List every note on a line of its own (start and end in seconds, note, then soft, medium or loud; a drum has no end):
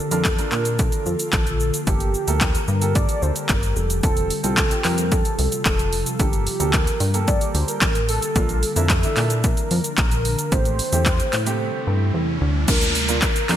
0.00 3.99 D3 medium
0.00 1.85 F3 medium
0.00 1.85 A#3 medium
0.00 1.85 F4 medium
0.11 0.40 F2 loud
0.11 0.27 D4 medium
0.11 0.27 F4 medium
0.11 0.53 A4 loud
0.11 0.27 A#4 medium
0.11 closed hi-hat medium
0.11 shaker medium
0.25 kick loud
0.25 clap loud
0.25 closed hi-hat medium
0.25 shaker medium
0.38 1.01 D4 medium
0.38 1.02 F4 medium
0.38 1.02 A#4 medium
0.38 closed hi-hat medium
0.38 shaker medium
0.52 0.90 A#2 medium
0.52 0.72 A#4 loud
0.52 clap medium
0.52 shaker soft
0.65 closed hi-hat soft
0.65 shaker medium
0.72 0.80 A#4 medium
0.78 1.32 A4 loud
0.78 kick loud
0.78 closed hi-hat medium
0.78 shaker medium
0.92 closed hi-hat medium
0.92 shaker medium
1.06 1.16 F2 loud
1.06 shaker soft
1.19 closed hi-hat medium
1.19 shaker medium
1.33 1.71 A#1 medium
1.33 1.83 A4 loud
1.33 kick loud
1.33 clap loud
1.33 closed hi-hat medium
1.33 shaker medium
1.47 closed hi-hat soft
1.47 shaker soft
1.60 shaker medium
1.74 closed hi-hat medium
1.74 shaker medium
1.87 2.16 G1 loud
1.87 8.32 G3 medium
1.87 2.11 A#3 medium
1.87 4.01 A#3 medium
1.87 2.43 G4 loud
1.87 2.11 G4 medium
1.87 4.01 G4 medium
1.87 2.11 A4 medium
1.87 kick loud
1.87 closed hi-hat medium
1.87 shaker medium
2.00 closed hi-hat soft
2.00 shaker soft
2.14 shaker medium
2.27 2.56 D2 loud
2.27 2.59 A#3 medium
2.27 2.59 G4 medium
2.27 2.59 A4 medium
2.27 closed hi-hat medium
2.27 shaker medium
2.41 2.97 A#4 loud
2.41 kick loud
2.41 clap loud
2.41 closed hi-hat medium
2.41 shaker medium
2.55 closed hi-hat medium
2.55 shaker medium
2.68 3.06 G2 medium
2.68 shaker medium
2.81 3.45 A#3 medium
2.81 3.45 G4 medium
2.81 3.45 A4 medium
2.81 closed hi-hat medium
2.81 shaker medium
2.95 3.24 D5 loud
2.95 kick loud
2.95 closed hi-hat medium
2.95 shaker medium
3.09 closed hi-hat medium
3.09 shaker medium
3.22 3.32 D2 loud
3.22 3.37 C5 loud
3.22 shaker soft
3.36 3.78 A#4 loud
3.36 closed hi-hat medium
3.36 shaker medium
3.49 3.74 G1 medium
3.49 kick loud
3.49 clap loud
3.49 closed hi-hat medium
3.49 shaker medium
3.63 closed hi-hat soft
3.63 shaker medium
3.76 4.01 F1 medium
3.76 4.03 A4 medium
3.76 shaker medium
3.90 closed hi-hat medium
3.90 shaker medium
4.03 4.32 F1 loud
4.03 6.17 C3 medium
4.03 6.17 F3 medium
4.03 4.27 C4 medium
4.03 6.17 F4 medium
4.03 4.27 F4 medium
4.03 4.41 A4 loud
4.03 4.27 A4 medium
4.03 kick loud
4.03 closed hi-hat medium
4.03 shaker medium
4.17 closed hi-hat soft
4.17 shaker soft
4.30 open hi-hat medium
4.30 shaker medium
4.44 4.73 C2 loud
4.44 4.59 C4 medium
4.44 4.60 F4 medium
4.44 4.60 A4 medium
4.44 4.82 A4 loud
4.44 closed hi-hat medium
4.44 shaker medium
4.57 kick loud
4.57 clap loud
4.57 closed hi-hat medium
4.57 shaker medium
4.71 5.34 C4 medium
4.71 5.34 F4 medium
4.71 5.34 G4 medium
4.71 closed hi-hat medium
4.71 shaker medium
4.84 5.23 F2 loud
4.84 5.13 A#4 loud
4.84 clap medium
4.84 open hi-hat medium
4.84 shaker medium
4.98 closed hi-hat medium
4.98 shaker medium
5.12 5.65 A4 loud
5.12 kick loud
5.12 closed hi-hat medium
5.12 shaker medium
5.25 closed hi-hat medium
5.25 shaker medium
5.39 5.48 C2 loud
5.39 open hi-hat medium
5.39 shaker soft
5.52 closed hi-hat medium
5.52 shaker medium
5.65 6.04 F1 medium
5.65 6.21 A4 loud
5.65 kick loud
5.65 clap loud
5.65 closed hi-hat medium
5.65 shaker medium
5.79 closed hi-hat soft
5.79 shaker soft
5.93 open hi-hat medium
5.93 shaker medium
6.06 closed hi-hat medium
6.06 shaker medium
6.19 6.48 G1 loud
6.19 10.48 D3 medium
6.19 6.43 A#3 medium
6.19 10.48 A#3 medium
6.19 6.43 G4 medium
6.19 8.34 G4 medium
6.19 6.75 G4 loud
6.19 6.43 A4 medium
6.19 kick loud
6.19 closed hi-hat medium
6.19 shaker medium
6.33 closed hi-hat soft
6.33 shaker soft
6.47 open hi-hat medium
6.47 shaker medium
6.60 6.89 D2 loud
6.60 6.91 A#3 medium
6.60 6.92 G4 medium
6.60 6.92 A4 medium
6.60 closed hi-hat medium
6.60 shaker medium
6.73 7.29 A#4 loud
6.73 kick loud
6.73 clap loud
6.73 closed hi-hat medium
6.73 shaker medium
6.87 closed hi-hat medium
6.87 shaker medium
7.00 7.39 G2 loud
7.00 open hi-hat medium
7.00 shaker medium
7.14 7.77 A#3 medium
7.14 7.77 G4 medium
7.14 7.77 A4 medium
7.14 closed hi-hat medium
7.14 shaker medium
7.28 7.56 D5 loud
7.28 kick loud
7.28 closed hi-hat medium
7.28 shaker medium
7.41 closed hi-hat medium
7.41 shaker medium
7.54 7.64 D2 loud
7.54 7.68 C5 loud
7.54 open hi-hat medium
7.54 shaker medium
7.68 8.06 A#4 loud
7.68 closed hi-hat medium
7.68 shaker medium
7.81 8.20 A1 medium
7.81 kick loud
7.81 clap loud
7.81 closed hi-hat medium
7.81 shaker medium
7.95 closed hi-hat medium
7.95 shaker medium
8.09 8.72 A4 loud
8.09 open hi-hat medium
8.09 shaker medium
8.22 closed hi-hat medium
8.22 shaker medium
8.35 8.64 A#1 loud
8.35 10.50 F3 medium
8.35 8.59 A#3 medium
8.35 10.50 D4 medium
8.35 8.59 D4 medium
8.35 8.60 F4 medium
8.35 kick loud
8.35 closed hi-hat medium
8.35 riser medium
8.35 shaker medium
8.49 closed hi-hat soft
8.49 shaker soft
8.63 open hi-hat medium
8.63 shaker medium
8.76 9.05 F2 loud
8.76 8.92 A#3 medium
8.76 8.92 D4 medium
8.76 8.92 E4 medium
8.76 8.89 A4 medium
8.76 closed hi-hat medium
8.76 shaker medium
8.90 9.46 A4 medium
8.90 kick loud
8.90 clap loud
8.90 closed hi-hat medium
8.90 shaker medium
9.03 9.66 A#3 medium
9.03 9.67 D4 medium
9.03 9.67 E4 medium
9.03 closed hi-hat medium
9.03 shaker medium
9.16 9.55 A#2 loud
9.16 clap medium
9.16 open hi-hat medium
9.16 shaker soft
9.30 closed hi-hat soft
9.30 shaker medium
9.44 9.97 A#4 loud
9.44 kick loud
9.44 closed hi-hat medium
9.44 shaker medium
9.57 closed hi-hat medium
9.57 shaker medium
9.71 9.80 F2 loud
9.71 open hi-hat medium
9.71 shaker soft
9.84 closed hi-hat medium
9.84 shaker medium
9.98 10.36 A#1 medium
9.98 10.54 A#4 loud
9.98 kick loud
9.98 clap loud
9.98 closed hi-hat medium
9.98 shaker medium
10.11 closed hi-hat soft
10.11 shaker soft
10.25 open hi-hat medium
10.25 shaker medium
10.39 closed hi-hat medium
10.39 shaker medium
10.52 10.81 A1 loud
10.52 12.66 C3 medium
10.52 12.66 G3 medium
10.52 10.76 A3 medium
10.52 12.66 A3 medium
10.52 10.76 C4 medium
10.52 12.66 E4 medium
10.52 10.76 G4 medium
10.52 12.41 C5 loud
10.52 kick loud
10.52 closed hi-hat medium
10.52 shaker medium
10.65 closed hi-hat soft
10.65 shaker soft
10.79 open hi-hat medium
10.79 shaker medium
10.92 11.21 E2 loud
10.92 11.24 A3 medium
10.92 11.24 C4 medium
10.92 11.24 G4 medium
10.92 closed hi-hat medium
10.92 shaker medium
11.06 kick loud
11.06 clap loud
11.06 closed hi-hat medium
11.06 shaker medium
11.20 closed hi-hat medium
11.20 shaker medium
11.33 11.71 A2 loud
11.33 clap medium
11.33 open hi-hat medium
11.33 shaker medium
11.46 12.10 A3 medium
11.46 12.10 C4 medium
11.46 12.10 G4 loud
11.46 closed hi-hat medium
11.46 shaker medium
11.87 12.11 G2 medium
12.14 12.39 E2 medium
12.41 12.66 D2 medium
12.68 13.25 D2 loud
12.68 13.57 D3 medium
12.68 13.57 F3 medium
12.68 12.92 A#3 medium
12.68 13.57 A#3 medium
12.68 12.92 D4 medium
12.68 13.57 F4 medium
12.68 12.92 F4 medium
12.68 13.19 A#4 medium
12.68 kick loud
12.68 closed hi-hat medium
12.68 crash loud
12.68 downlifter medium
12.68 shaker medium
12.81 closed hi-hat soft
12.81 shaker soft
12.81 shaker medium
12.95 open hi-hat medium
12.95 shaker medium
13.08 13.32 A#3 medium
13.08 13.32 D4 medium
13.08 13.32 F4 medium
13.08 closed hi-hat medium
13.08 shaker medium
13.22 13.57 A#4 medium
13.22 kick loud
13.22 clap loud
13.22 closed hi-hat medium
13.22 shaker medium
13.36 closed hi-hat medium
13.36 shaker medium
13.49 13.57 F2 loud
13.49 13.57 A#3 medium
13.49 13.57 D4 medium
13.49 13.57 F4 medium
13.49 clap medium
13.49 open hi-hat medium
13.49 shaker medium